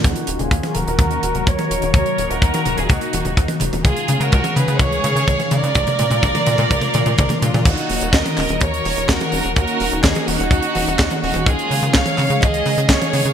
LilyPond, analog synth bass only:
\new Staff \with { instrumentName = "Analog synth bass" } { \clef bass \time 4/4 \key ees \minor \tempo 4 = 126 ees,16 r16 ees,,16 ees,,16 ees,16 r16 ees,,16 ees,,16 ees,8 ees,,16 ees,,16 ees,16 r16 ees,,16 ees,,16 | ees,16 r16 ees,,16 ees,,16 ees,16 r16 ees,,16 ees,,16 ees,16 r16 ees,,16 ees,,16 ees,16 r16 ees,,16 ees,,16 | des,16 r16 des16 des16 des,16 r16 des16 des16 des,8 des16 des16 des,16 r16 des16 des16 | bes,,16 r16 bes,16 bes,16 bes,,16 r16 bes,16 bes,16 bes,,16 r16 bes,16 bes,16 bes,,16 r16 bes,16 bes,16 |
ees,16 r16 ees,,16 ees,,16 ees,16 r16 ees,,16 ees,,16 ees,8 ees,,16 ees,,16 ees,16 r16 ees,,16 ees,,16 | ees,16 r16 ees,,16 ees,,16 ees,16 r16 ees,,16 ees,,16 ees,16 r16 ees,,16 ees,,16 ees,16 r16 ees,,16 ees,,16 | des,16 r16 des16 des16 des,16 r16 des16 des16 des,8 des16 des16 des,16 r16 des16 des16 | }